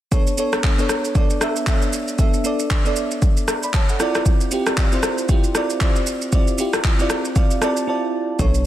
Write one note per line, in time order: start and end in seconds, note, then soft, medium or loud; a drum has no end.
0.11 0.33 B3 medium
0.11 0.34 D4 medium
0.11 0.34 A4 medium
0.11 0.34 C#5 medium
0.11 kick loud
0.11 shaker medium
0.27 shaker soft
0.37 0.69 B3 medium
0.37 0.70 D4 medium
0.37 0.70 A4 medium
0.37 0.71 C#5 medium
0.37 shaker medium
0.53 cross-stick medium
0.53 shaker medium
0.64 kick medium
0.64 clap medium
0.64 shaker medium
0.78 1.09 B3 medium
0.78 1.09 D4 medium
0.78 1.09 A4 medium
0.78 1.10 C#5 medium
0.78 shaker medium
0.89 cross-stick medium
0.89 shaker medium
1.05 shaker soft
1.15 1.37 B3 medium
1.15 1.37 D4 medium
1.15 1.37 A4 medium
1.15 1.38 D5 medium
1.15 kick loud
1.15 shaker medium
1.30 shaker medium
1.41 1.62 B3 medium
1.41 1.63 D4 medium
1.41 1.63 A4 medium
1.41 1.64 E5 medium
1.41 cross-stick medium
1.41 shaker medium
1.56 shaker soft
1.67 2.10 B3 medium
1.67 2.10 D4 medium
1.67 2.11 A4 medium
1.67 2.11 E5 medium
1.67 kick loud
1.67 clap medium
1.67 shaker medium
1.82 shaker medium
1.93 shaker loud
2.08 shaker soft
2.18 2.40 B3 medium
2.18 2.41 D4 medium
2.18 2.41 A4 medium
2.18 2.41 E5 medium
2.18 kick loud
2.18 shaker medium
2.34 shaker soft
2.44 2.76 B3 medium
2.44 2.77 D4 medium
2.44 2.77 A4 medium
2.44 2.77 D5 medium
2.44 shaker medium
2.59 shaker medium
2.70 kick loud
2.70 clap medium
2.70 shaker medium
2.85 3.15 B3 medium
2.85 3.16 D4 medium
2.85 3.16 A4 medium
2.85 3.17 D5 medium
2.85 shaker soft
2.96 shaker medium
3.11 shaker soft
3.22 kick loud
3.22 shaker medium
3.37 shaker medium
3.48 cross-stick medium
3.48 shaker medium
3.63 3.74 D5 medium
3.63 3.74 B5 medium
3.63 shaker medium
3.74 3.89 C#5 medium
3.74 3.89 A5 medium
3.74 kick loud
3.74 clap medium
3.74 shaker medium
3.89 4.14 A4 medium
3.89 4.14 F#5 medium
3.89 shaker medium
3.99 4.43 C4 medium
3.99 4.43 E4 medium
3.99 4.43 F4 medium
3.99 4.44 D5 loud
3.99 cross-stick medium
3.99 shaker medium
4.15 cross-stick medium
4.15 shaker soft
4.26 kick loud
4.26 shaker medium
4.41 shaker soft
4.51 4.83 C4 medium
4.51 4.84 E4 medium
4.51 4.84 F4 medium
4.51 4.84 G4 medium
4.51 shaker medium
4.66 cross-stick medium
4.66 shaker medium
4.77 kick loud
4.77 clap medium
4.77 shaker medium
4.92 5.22 C4 medium
4.92 5.23 E4 medium
4.92 5.23 F4 medium
4.92 5.24 C5 loud
4.92 shaker medium
5.03 cross-stick medium
5.03 shaker medium
5.18 shaker soft
5.29 5.50 C4 medium
5.29 5.51 E4 medium
5.29 5.51 F4 medium
5.29 5.52 G4 medium
5.29 kick loud
5.29 shaker medium
5.44 shaker medium
5.55 5.76 C4 medium
5.55 5.77 E4 medium
5.55 5.77 F4 medium
5.55 5.78 D5 medium
5.55 cross-stick medium
5.55 shaker medium
5.70 shaker medium
5.81 6.24 C4 medium
5.81 6.24 E4 medium
5.81 6.25 F4 medium
5.81 6.25 D5 medium
5.81 kick loud
5.81 clap medium
5.81 shaker medium
5.96 shaker medium
6.07 shaker loud
6.22 shaker soft
6.32 6.54 C4 medium
6.32 6.54 E4 medium
6.32 6.55 F4 medium
6.32 6.55 D5 medium
6.32 kick loud
6.32 shaker medium
6.47 shaker soft
6.58 6.90 C4 medium
6.58 6.91 E4 medium
6.58 6.91 F4 medium
6.58 6.91 G4 loud
6.58 shaker medium
6.73 cross-stick medium
6.73 shaker medium
6.84 kick loud
6.84 clap medium
6.84 shaker medium
6.99 7.29 C4 medium
6.99 7.30 E4 medium
6.99 7.30 F4 medium
6.99 7.10 D5 medium
6.99 shaker medium
7.10 cross-stick loud
7.10 shaker medium
7.25 shaker soft
7.35 7.57 C4 medium
7.35 7.58 E4 medium
7.35 7.58 F4 medium
7.35 7.59 D5 medium
7.35 7.60 F5 medium
7.35 kick loud
7.35 shaker medium
7.51 shaker medium
7.62 7.83 C4 medium
7.62 7.84 E4 medium
7.62 7.84 F4 medium
7.62 7.84 D5 loud
7.62 7.86 A5 medium
7.62 cross-stick medium
7.62 shaker medium
7.77 shaker medium
7.87 8.31 C4 medium
7.87 8.31 E4 medium
7.87 8.31 F4 medium
7.87 8.32 D5 medium
7.87 8.36 A5 medium
8.39 8.66 B1 loud
8.39 8.61 B3 medium
8.39 8.61 D4 medium
8.39 8.62 A4 medium
8.39 8.62 C#5 medium
8.39 kick loud
8.39 shaker medium
8.54 shaker soft